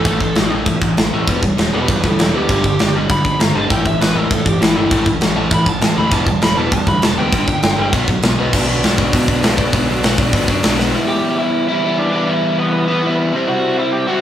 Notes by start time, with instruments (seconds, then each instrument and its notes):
Already playing: lead electric guitar A4
0.05 picked electric bass A1, overdriven electric guitar A2 E3 A3, kick, crash
0.20 picked electric bass A1, overdriven electric guitar A2 E3, kick
0.35 picked electric bass A1, overdriven electric guitar A2 E3, snare, crash
0.51 picked electric bass A1, overdriven electric guitar A2 E3 A3
0.66 picked electric bass A2, overdriven electric guitar A2 E3, kick, crash
0.82 picked electric bass A1, overdriven electric guitar A2 E3, kick
0.97 picked electric bass A1, overdriven electric guitar A2 E3, snare, crash
1.13 picked electric bass A1, overdriven electric guitar A2 E3 A3
1.27 picked electric bass E1, overdriven electric guitar E3 G3 B3, kick, crash
1.43 overdriven electric guitar E3 G3, kick
1.58 picked electric bass E1, overdriven electric guitar E3 G3, snare, crash
1.73 picked electric bass E1, overdriven electric guitar E3 G3 B3, lead electric guitar G4 B4
1.88 picked electric bass E2, overdriven electric guitar E3 G3, lead electric guitar G4 B4, kick, crash
2.04 picked electric bass D2, overdriven electric guitar E3 G3, lead electric guitar E4 A4, kick
2.19 picked electric bass E1, overdriven electric guitar E3 G3, lead electric guitar E4 A4, snare, crash
2.34 picked electric bass D2, overdriven electric guitar E3 G3 B3, lead electric guitar G4
2.49 picked electric bass G1, overdriven electric guitar G2 D3 G3, kick, crash
2.64 picked electric bass G1, overdriven electric guitar G2 D3, kick
2.79 picked electric bass G1, overdriven electric guitar G2 D3, snare, crash
2.95 picked electric bass G1, overdriven electric guitar G2 D3 G3
3.10 picked electric bass G2, overdriven electric guitar G2 D3, lead electric guitar B5, kick, crash
3.25 picked electric bass G1, overdriven electric guitar G2 D3, kick
3.40 picked electric bass G1, overdriven electric guitar G2 D3, lead electric guitar A#5, snare, crash
3.54 picked electric bass G1, overdriven electric guitar G2 D3 G3, lead electric guitar A5
3.70 picked electric bass A1, overdriven electric guitar A2 E3 A3, lead electric guitar G5, kick, crash
3.86 overdriven electric guitar A2 E3, lead electric guitar E5, kick
4.00 picked electric bass A1, overdriven electric guitar A2 E3, lead electric guitar B4, snare, crash
4.15 picked electric bass A1, overdriven electric guitar A2 E3 A3, lead electric guitar A#4
4.31 overdriven electric guitar A2 E3, picked electric bass A2, lead electric guitar A4, kick, crash
4.46 picked electric bass G1, overdriven electric guitar A2 E3, lead electric guitar G4, kick
4.61 picked electric bass A1, overdriven electric guitar A2 E3, lead electric guitar E4, snare, crash
4.76 picked electric bass G1, overdriven electric guitar A2 E3 A3, lead electric guitar E4
4.91 picked electric bass A1, overdriven electric guitar A2 E3 A3, kick, crash
5.06 picked electric bass A1, overdriven electric guitar A2 E3, kick
5.21 picked electric bass A1, overdriven electric guitar A2 E3, snare, crash
5.36 picked electric bass A1, overdriven electric guitar A2 E3 A3, lead electric guitar A5
5.51 overdriven electric guitar A2 E3, picked electric bass A2, lead electric guitar B5, kick, crash
5.66 picked electric bass A1, overdriven electric guitar A2 E3, lead electric guitar A5, kick
5.81 picked electric bass A1, overdriven electric guitar A2 E3, lead electric guitar A5, snare, crash
5.96 picked electric bass D2, overdriven electric guitar A2 E3 A3, lead electric guitar B5
6.11 picked electric bass E1, overdriven electric guitar E3 G3 B3, lead electric guitar A5, kick, crash
6.27 overdriven electric guitar E3 G3, lead electric guitar A5, kick
6.42 picked electric bass E1, overdriven electric guitar E3 G3, lead electric guitar B5, snare, crash
6.57 picked electric bass E1, overdriven electric guitar E3 G3 B3, lead electric guitar A5
6.72 picked electric bass E2, overdriven electric guitar E3 G3, lead electric guitar A5, kick, crash
6.87 picked electric bass D2, overdriven electric guitar E3 G3, lead electric guitar B5, kick
7.02 picked electric bass E1, overdriven electric guitar E3 G3, lead electric guitar A5, snare, crash
7.17 picked electric bass D2, overdriven electric guitar E3 G3 B3, lead electric guitar G5
7.32 picked electric bass G1, overdriven electric guitar G2 D3 G3, kick, crash
7.48 picked electric bass G1, overdriven electric guitar G2 D3, kick
7.63 picked electric bass G1, overdriven electric guitar G2 D3, snare, crash
7.78 picked electric bass G1, overdriven electric guitar G2 D3 G3
7.93 picked electric bass B1, overdriven electric guitar B2 F#3 B3, kick, crash
8.08 picked electric bass B1, overdriven electric guitar B2 F#3, kick
8.22 picked electric bass B1, overdriven electric guitar B2 F#3, snare, crash
8.38 picked electric bass B1, overdriven electric guitar B2 F#3 B3
8.53 picked electric bass B1, overdriven electric guitar B2 F#3 B3 D4, kick, crash
8.68 picked electric bass B1, overdriven electric guitar B2 F#3 B3 D4
8.83 picked electric bass B1, overdriven electric guitar B2 F#3 B3 D4, snare, open hi-hat
8.98 picked electric bass B1, overdriven electric guitar B2 F#3 B3 D4, kick
9.13 picked electric bass B2, overdriven electric guitar B2 F#3 B3 D4, kick, open hi-hat
9.28 picked electric bass B1, overdriven electric guitar B2 F#3 B3 D4, kick
9.43 picked electric bass B1, overdriven electric guitar B2 F#3 B3 D4, snare, open hi-hat
9.58 picked electric bass B1, overdriven electric guitar B2 F#3 B3 D4, kick
9.73 picked electric bass B1, overdriven electric guitar B2 F#3 B3 D4, kick, open hi-hat
9.88 picked electric bass B1, overdriven electric guitar B2 F#3 B3 D4
10.03 picked electric bass B1, overdriven electric guitar B2 F#3 B3 D4, snare, open hi-hat
10.18 overdriven electric guitar B2 F#3 B3 D4, kick
10.33 picked electric bass B1, overdriven electric guitar B2 F#3 B3 D4, kick, open hi-hat
10.48 picked electric bass F#2, overdriven electric guitar B2 F#3 B3 D4, kick
10.63 picked electric bass B1, overdriven electric guitar B2 F#3 B3 D4, snare, open hi-hat
10.78 picked electric bass B1, overdriven electric guitar B2 F#3 B3 D4, snare
10.93 overdriven electric guitar E3 G3 B3
10.97 overdriven electric guitar E4
11.08 lead electric guitar G4 G5
11.39 lead electric guitar E4 E5
11.68 overdriven electric guitar G3 B3 E4, lead electric guitar E4 E5
11.72 overdriven electric guitar E3
11.83 overdriven electric guitar E3 G3 B3 E4
11.98 lead electric guitar D4 D5
12.12 overdriven electric guitar E3 G3 B3 E4
12.28 lead electric guitar E4 E5
12.58 lead electric guitar B3 B4
12.72 lead electric guitar B3 B4
12.88 overdriven electric guitar E3 G3 B3 E4
13.03 overdriven electric guitar E3 G3 B3 E4
13.33 overdriven electric guitar C3 G3 C4 E4
13.48 lead electric guitar F#4 F#5
13.79 lead electric guitar E4 E5
13.92 lead electric guitar G4 G5
14.07 overdriven electric guitar C3 G3 C4 E4, lead electric guitar F#4 F#5